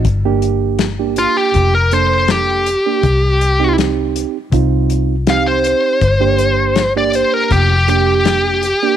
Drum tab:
HH |xxxxxxxx|xxxxxxxx|xxxxxxxx|
SD |--o---o-|--o---o-|--o---o-|
BD |o---o---|o---o---|o---o---|